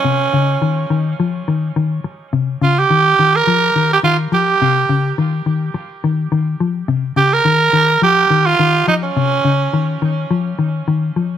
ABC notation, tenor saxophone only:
X:1
M:4/4
L:1/16
Q:1/4=105
K:Ebmix
V:1 name="Tenor saxophone"
D6- D z8 z | z2 F G4 B4 G F2 G2- | G4 z12 | z2 G B4- B G3 F3 E D- |
D6- D z8 z |]